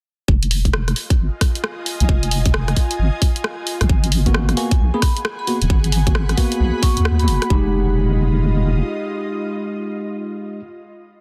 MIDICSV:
0, 0, Header, 1, 6, 480
1, 0, Start_track
1, 0, Key_signature, -4, "minor"
1, 0, Tempo, 451128
1, 303, Time_signature, 4, 2, 24, 8
1, 11924, End_track
2, 0, Start_track
2, 0, Title_t, "Vibraphone"
2, 0, Program_c, 0, 11
2, 4862, Note_on_c, 0, 80, 89
2, 5224, Note_off_c, 0, 80, 0
2, 5255, Note_on_c, 0, 83, 89
2, 5312, Note_off_c, 0, 83, 0
2, 5344, Note_on_c, 0, 83, 76
2, 5441, Note_off_c, 0, 83, 0
2, 5735, Note_on_c, 0, 83, 90
2, 5873, Note_off_c, 0, 83, 0
2, 6302, Note_on_c, 0, 80, 89
2, 6483, Note_off_c, 0, 80, 0
2, 7264, Note_on_c, 0, 85, 93
2, 7444, Note_off_c, 0, 85, 0
2, 7652, Note_on_c, 0, 83, 95
2, 7982, Note_off_c, 0, 83, 0
2, 11924, End_track
3, 0, Start_track
3, 0, Title_t, "Ambient pad"
3, 0, Program_c, 1, 92
3, 298, Note_on_c, 1, 65, 75
3, 801, Note_on_c, 1, 75, 91
3, 959, Note_on_c, 1, 80, 81
3, 4141, Note_off_c, 1, 65, 0
3, 4149, Note_on_c, 1, 68, 78
3, 4825, Note_on_c, 1, 78, 84
3, 5217, Note_off_c, 1, 75, 0
3, 5345, Note_on_c, 1, 83, 75
3, 5568, Note_off_c, 1, 80, 0
3, 7984, Note_off_c, 1, 78, 0
3, 7985, Note_off_c, 1, 83, 0
3, 7986, Note_off_c, 1, 68, 0
3, 7987, Note_on_c, 1, 65, 81
3, 8076, Note_on_c, 1, 75, 80
3, 11275, Note_off_c, 1, 65, 0
3, 11365, Note_off_c, 1, 75, 0
3, 11924, End_track
4, 0, Start_track
4, 0, Title_t, "Tine electric piano"
4, 0, Program_c, 2, 4
4, 4536, Note_on_c, 2, 58, 84
4, 4536, Note_on_c, 2, 59, 80
4, 4536, Note_on_c, 2, 66, 95
4, 4843, Note_off_c, 2, 58, 0
4, 4843, Note_off_c, 2, 59, 0
4, 4843, Note_off_c, 2, 66, 0
4, 4863, Note_on_c, 2, 58, 85
4, 4863, Note_on_c, 2, 59, 78
4, 4863, Note_on_c, 2, 66, 89
4, 5018, Note_off_c, 2, 58, 0
4, 5018, Note_off_c, 2, 59, 0
4, 5018, Note_off_c, 2, 66, 0
4, 5256, Note_on_c, 2, 58, 89
4, 5256, Note_on_c, 2, 59, 81
4, 5256, Note_on_c, 2, 68, 102
4, 5313, Note_off_c, 2, 58, 0
4, 5313, Note_off_c, 2, 59, 0
4, 5313, Note_off_c, 2, 68, 0
4, 5824, Note_on_c, 2, 66, 81
4, 5825, Note_on_c, 2, 58, 77
4, 5825, Note_on_c, 2, 59, 72
4, 5921, Note_off_c, 2, 66, 0
4, 5922, Note_off_c, 2, 58, 0
4, 5922, Note_off_c, 2, 59, 0
4, 6454, Note_on_c, 2, 58, 78
4, 6454, Note_on_c, 2, 59, 68
4, 6454, Note_on_c, 2, 66, 83
4, 6512, Note_off_c, 2, 58, 0
4, 6512, Note_off_c, 2, 59, 0
4, 6512, Note_off_c, 2, 66, 0
4, 6783, Note_on_c, 2, 58, 89
4, 6783, Note_on_c, 2, 59, 78
4, 6783, Note_on_c, 2, 66, 91
4, 7972, Note_off_c, 2, 59, 0
4, 7973, Note_off_c, 2, 58, 0
4, 7973, Note_off_c, 2, 66, 0
4, 7983, Note_on_c, 2, 56, 82
4, 7983, Note_on_c, 2, 63, 75
4, 7983, Note_on_c, 2, 67, 94
4, 11272, Note_off_c, 2, 56, 0
4, 11272, Note_off_c, 2, 63, 0
4, 11272, Note_off_c, 2, 67, 0
4, 11924, End_track
5, 0, Start_track
5, 0, Title_t, "Wobble bass"
5, 0, Program_c, 3, 39
5, 301, Note_on_c, 3, 29, 98
5, 991, Note_off_c, 3, 29, 0
5, 1260, Note_on_c, 3, 32, 81
5, 1380, Note_off_c, 3, 32, 0
5, 2133, Note_on_c, 3, 36, 93
5, 2203, Note_off_c, 3, 36, 0
5, 2222, Note_on_c, 3, 29, 99
5, 2911, Note_off_c, 3, 29, 0
5, 3182, Note_on_c, 3, 32, 87
5, 3301, Note_off_c, 3, 32, 0
5, 4056, Note_on_c, 3, 36, 94
5, 4124, Note_off_c, 3, 36, 0
5, 4144, Note_on_c, 3, 32, 102
5, 4832, Note_off_c, 3, 32, 0
5, 5104, Note_on_c, 3, 35, 88
5, 5222, Note_off_c, 3, 35, 0
5, 5976, Note_on_c, 3, 27, 94
5, 6044, Note_off_c, 3, 27, 0
5, 6064, Note_on_c, 3, 32, 101
5, 6753, Note_off_c, 3, 32, 0
5, 7023, Note_on_c, 3, 35, 88
5, 7142, Note_off_c, 3, 35, 0
5, 7414, Note_on_c, 3, 39, 92
5, 7743, Note_on_c, 3, 30, 91
5, 7759, Note_off_c, 3, 39, 0
5, 7861, Note_off_c, 3, 30, 0
5, 7982, Note_on_c, 3, 29, 99
5, 9380, Note_off_c, 3, 29, 0
5, 11924, End_track
6, 0, Start_track
6, 0, Title_t, "Drums"
6, 301, Note_on_c, 9, 36, 112
6, 408, Note_off_c, 9, 36, 0
6, 453, Note_on_c, 9, 42, 52
6, 542, Note_on_c, 9, 46, 99
6, 560, Note_off_c, 9, 42, 0
6, 648, Note_off_c, 9, 46, 0
6, 693, Note_on_c, 9, 36, 57
6, 695, Note_on_c, 9, 42, 60
6, 782, Note_on_c, 9, 37, 110
6, 800, Note_off_c, 9, 36, 0
6, 801, Note_off_c, 9, 42, 0
6, 889, Note_off_c, 9, 37, 0
6, 935, Note_on_c, 9, 37, 52
6, 935, Note_on_c, 9, 42, 51
6, 1023, Note_on_c, 9, 46, 85
6, 1041, Note_off_c, 9, 37, 0
6, 1041, Note_off_c, 9, 42, 0
6, 1129, Note_off_c, 9, 46, 0
6, 1174, Note_on_c, 9, 36, 105
6, 1174, Note_on_c, 9, 42, 62
6, 1280, Note_off_c, 9, 36, 0
6, 1281, Note_off_c, 9, 42, 0
6, 1502, Note_on_c, 9, 36, 99
6, 1502, Note_on_c, 9, 37, 65
6, 1502, Note_on_c, 9, 46, 105
6, 1608, Note_off_c, 9, 37, 0
6, 1608, Note_off_c, 9, 46, 0
6, 1609, Note_off_c, 9, 36, 0
6, 1654, Note_on_c, 9, 42, 61
6, 1742, Note_on_c, 9, 37, 113
6, 1760, Note_off_c, 9, 42, 0
6, 1848, Note_off_c, 9, 37, 0
6, 1981, Note_on_c, 9, 46, 92
6, 2088, Note_off_c, 9, 46, 0
6, 2133, Note_on_c, 9, 42, 63
6, 2222, Note_on_c, 9, 36, 114
6, 2239, Note_off_c, 9, 42, 0
6, 2329, Note_off_c, 9, 36, 0
6, 2373, Note_on_c, 9, 42, 50
6, 2462, Note_on_c, 9, 46, 101
6, 2479, Note_off_c, 9, 42, 0
6, 2568, Note_off_c, 9, 46, 0
6, 2613, Note_on_c, 9, 42, 61
6, 2614, Note_on_c, 9, 36, 103
6, 2702, Note_on_c, 9, 37, 117
6, 2719, Note_off_c, 9, 42, 0
6, 2721, Note_off_c, 9, 36, 0
6, 2808, Note_off_c, 9, 37, 0
6, 2853, Note_on_c, 9, 37, 52
6, 2853, Note_on_c, 9, 42, 49
6, 2942, Note_on_c, 9, 46, 85
6, 2943, Note_on_c, 9, 36, 60
6, 2960, Note_off_c, 9, 37, 0
6, 2960, Note_off_c, 9, 42, 0
6, 3049, Note_off_c, 9, 46, 0
6, 3050, Note_off_c, 9, 36, 0
6, 3093, Note_on_c, 9, 42, 62
6, 3200, Note_off_c, 9, 42, 0
6, 3423, Note_on_c, 9, 36, 104
6, 3423, Note_on_c, 9, 46, 103
6, 3529, Note_off_c, 9, 46, 0
6, 3530, Note_off_c, 9, 36, 0
6, 3575, Note_on_c, 9, 42, 59
6, 3663, Note_on_c, 9, 37, 117
6, 3681, Note_off_c, 9, 42, 0
6, 3769, Note_off_c, 9, 37, 0
6, 3902, Note_on_c, 9, 46, 88
6, 4008, Note_off_c, 9, 46, 0
6, 4053, Note_on_c, 9, 37, 68
6, 4053, Note_on_c, 9, 42, 62
6, 4144, Note_on_c, 9, 36, 118
6, 4159, Note_off_c, 9, 37, 0
6, 4159, Note_off_c, 9, 42, 0
6, 4250, Note_off_c, 9, 36, 0
6, 4295, Note_on_c, 9, 42, 50
6, 4382, Note_on_c, 9, 46, 98
6, 4401, Note_off_c, 9, 42, 0
6, 4488, Note_off_c, 9, 46, 0
6, 4534, Note_on_c, 9, 42, 61
6, 4535, Note_on_c, 9, 36, 62
6, 4623, Note_on_c, 9, 37, 121
6, 4641, Note_off_c, 9, 42, 0
6, 4642, Note_off_c, 9, 36, 0
6, 4729, Note_off_c, 9, 37, 0
6, 4775, Note_on_c, 9, 37, 52
6, 4775, Note_on_c, 9, 42, 48
6, 4863, Note_on_c, 9, 46, 85
6, 4881, Note_off_c, 9, 37, 0
6, 4881, Note_off_c, 9, 42, 0
6, 4969, Note_off_c, 9, 46, 0
6, 5015, Note_on_c, 9, 42, 61
6, 5016, Note_on_c, 9, 36, 107
6, 5122, Note_off_c, 9, 36, 0
6, 5122, Note_off_c, 9, 42, 0
6, 5343, Note_on_c, 9, 37, 65
6, 5343, Note_on_c, 9, 46, 101
6, 5345, Note_on_c, 9, 36, 106
6, 5450, Note_off_c, 9, 37, 0
6, 5450, Note_off_c, 9, 46, 0
6, 5451, Note_off_c, 9, 36, 0
6, 5496, Note_on_c, 9, 42, 60
6, 5584, Note_on_c, 9, 37, 122
6, 5603, Note_off_c, 9, 42, 0
6, 5691, Note_off_c, 9, 37, 0
6, 5824, Note_on_c, 9, 46, 86
6, 5931, Note_off_c, 9, 46, 0
6, 5975, Note_on_c, 9, 42, 61
6, 6064, Note_on_c, 9, 36, 116
6, 6082, Note_off_c, 9, 42, 0
6, 6171, Note_off_c, 9, 36, 0
6, 6216, Note_on_c, 9, 42, 53
6, 6303, Note_on_c, 9, 46, 97
6, 6322, Note_off_c, 9, 42, 0
6, 6409, Note_off_c, 9, 46, 0
6, 6456, Note_on_c, 9, 36, 108
6, 6456, Note_on_c, 9, 42, 63
6, 6543, Note_on_c, 9, 37, 115
6, 6562, Note_off_c, 9, 36, 0
6, 6562, Note_off_c, 9, 42, 0
6, 6649, Note_off_c, 9, 37, 0
6, 6696, Note_on_c, 9, 37, 52
6, 6696, Note_on_c, 9, 42, 51
6, 6783, Note_on_c, 9, 46, 86
6, 6784, Note_on_c, 9, 36, 61
6, 6802, Note_off_c, 9, 37, 0
6, 6802, Note_off_c, 9, 42, 0
6, 6890, Note_off_c, 9, 36, 0
6, 6890, Note_off_c, 9, 46, 0
6, 6935, Note_on_c, 9, 42, 62
6, 7041, Note_off_c, 9, 42, 0
6, 7263, Note_on_c, 9, 36, 106
6, 7263, Note_on_c, 9, 46, 94
6, 7370, Note_off_c, 9, 36, 0
6, 7370, Note_off_c, 9, 46, 0
6, 7415, Note_on_c, 9, 42, 60
6, 7504, Note_on_c, 9, 37, 123
6, 7522, Note_off_c, 9, 42, 0
6, 7610, Note_off_c, 9, 37, 0
6, 7656, Note_on_c, 9, 42, 33
6, 7744, Note_on_c, 9, 46, 86
6, 7762, Note_off_c, 9, 42, 0
6, 7850, Note_off_c, 9, 46, 0
6, 7895, Note_on_c, 9, 37, 66
6, 7895, Note_on_c, 9, 42, 65
6, 7983, Note_on_c, 9, 36, 110
6, 8001, Note_off_c, 9, 37, 0
6, 8001, Note_off_c, 9, 42, 0
6, 8090, Note_off_c, 9, 36, 0
6, 11924, End_track
0, 0, End_of_file